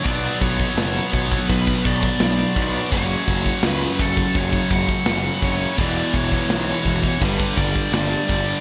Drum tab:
CC |x---x---x---x---|x---x---x---x---|x---x---x---x---|
SD |----o-------o---|----o-------o---|----o-------o---|
BD |o-oo--oooooo--o-|o-oo--oooooo--o-|o-oo--oooooo--o-|